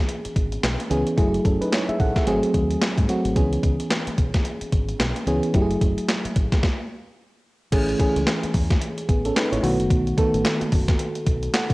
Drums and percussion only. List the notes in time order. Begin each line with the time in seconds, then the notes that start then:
0.09 closed hi-hat
0.25 closed hi-hat
0.36 kick, closed hi-hat
0.52 closed hi-hat
0.63 snare, clap, closed hi-hat
0.80 closed hi-hat
0.91 closed hi-hat
1.07 closed hi-hat
1.18 kick, closed hi-hat
1.34 closed hi-hat
1.45 kick, closed hi-hat
1.62 closed hi-hat
1.73 snare, clap, closed hi-hat
1.89 closed hi-hat
2.00 kick, closed hi-hat
2.16 kick, snare, closed hi-hat
2.27 closed hi-hat
2.43 closed hi-hat
2.54 kick, closed hi-hat
2.71 closed hi-hat
2.82 snare, clap, closed hi-hat
2.98 kick, closed hi-hat
3.09 closed hi-hat
3.25 closed hi-hat
3.36 kick, closed hi-hat
3.53 closed hi-hat
3.63 kick, closed hi-hat
3.80 closed hi-hat
3.91 snare, clap, closed hi-hat
4.07 closed hi-hat
4.18 kick, closed hi-hat
4.34 kick, snare, closed hi-hat
4.45 closed hi-hat
4.61 closed hi-hat
4.72 kick, closed hi-hat
4.89 closed hi-hat
5.00 snare, clap, closed hi-hat
5.16 closed hi-hat
5.27 closed hi-hat
5.43 closed hi-hat
5.54 kick, closed hi-hat
5.71 closed hi-hat
5.81 kick, closed hi-hat
5.98 closed hi-hat
6.09 snare, clap, closed hi-hat
6.25 closed hi-hat
6.36 kick, closed hi-hat
6.52 kick, snare, closed hi-hat
6.63 kick, snare
7.72 kick, closed hi-hat, crash
7.89 closed hi-hat
8.00 kick, closed hi-hat
8.16 closed hi-hat
8.27 snare, clap, closed hi-hat
8.43 closed hi-hat
8.54 kick, open hi-hat
8.71 kick, snare, closed hi-hat
8.82 closed hi-hat
8.98 closed hi-hat
9.09 kick, closed hi-hat
9.25 closed hi-hat
9.36 snare, clap, closed hi-hat
9.53 closed hi-hat
9.64 open hi-hat
9.80 closed hi-hat
9.90 kick, closed hi-hat
10.07 closed hi-hat
10.18 kick, closed hi-hat
10.34 closed hi-hat
10.45 snare, clap, closed hi-hat
10.61 closed hi-hat
10.72 kick, open hi-hat
10.88 kick, snare, closed hi-hat
10.99 closed hi-hat
11.15 closed hi-hat
11.27 kick, closed hi-hat
11.43 closed hi-hat
11.54 snare, clap, closed hi-hat
11.70 kick, closed hi-hat